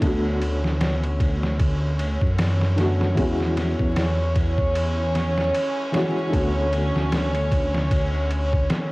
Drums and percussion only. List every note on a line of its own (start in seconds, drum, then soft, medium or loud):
0.02 kick loud
0.02 ride medium
0.41 ride medium
0.64 snare soft
0.81 snare loud
0.81 ride medium
1.04 ride soft
1.20 kick loud
1.20 ride medium
1.43 snare soft
1.60 kick loud
1.60 ride medium
1.99 ride medium
2.21 kick medium
2.38 snare loud
2.38 ride medium
2.61 snare soft
2.78 snare soft
2.78 ride medium
3.01 snare soft
3.17 kick loud
3.17 ride medium
3.40 snare soft
3.57 snare medium
3.57 ride medium
3.79 kick medium
3.96 snare loud
3.96 ride medium
4.36 kick loud
4.36 ride medium
4.58 kick medium
4.75 ride medium
5.15 snare soft
5.15 ride medium
5.38 snare medium
5.54 ride medium
5.94 snare loud
5.94 ride medium
6.33 kick loud
6.33 ride medium
6.73 ride medium
6.96 snare soft
7.12 snare loud
7.12 ride medium
7.35 ride soft
7.52 kick loud
7.52 ride medium
7.75 snare medium
7.91 kick loud
7.91 ride medium
8.31 ride medium
8.53 kick loud
8.70 snare loud
8.70 ride medium